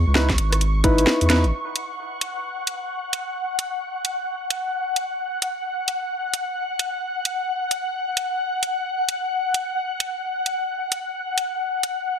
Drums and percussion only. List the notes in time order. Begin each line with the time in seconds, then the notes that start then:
0.15 snare
0.30 kick, snare, closed hi-hat
0.38 closed hi-hat
0.52 cross-stick, closed hi-hat
0.61 closed hi-hat
0.84 kick, closed hi-hat
0.98 closed hi-hat
1.07 snare
1.21 closed hi-hat
1.30 snare, closed hi-hat
1.44 closed hi-hat
1.76 closed hi-hat
2.21 closed hi-hat
2.67 closed hi-hat
3.13 closed hi-hat
3.59 closed hi-hat
4.05 closed hi-hat
4.50 closed hi-hat
4.96 closed hi-hat
5.42 closed hi-hat
5.88 closed hi-hat
6.34 closed hi-hat
6.79 closed hi-hat
7.25 closed hi-hat
7.71 closed hi-hat
8.17 closed hi-hat
8.63 closed hi-hat
9.09 closed hi-hat
9.54 closed hi-hat
10.00 closed hi-hat
10.46 closed hi-hat
10.92 closed hi-hat
11.38 closed hi-hat
11.83 closed hi-hat